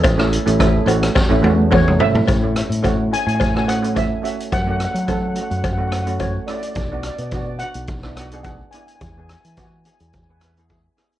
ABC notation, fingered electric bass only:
X:1
M:4/4
L:1/16
Q:"Swing 16ths" 1/4=107
K:A
V:1 name="Fingered electric bass" clef=bass
A,,,3 A,,,3 A,,,2 z A,,, E,,4- E,, A,, | A,,3 A,,4 A,,8 z | F,,3 F,4 F,,8 z | B,,,3 B,,4 B,,,8 z |
E,,3 E,4 E,,8 z |]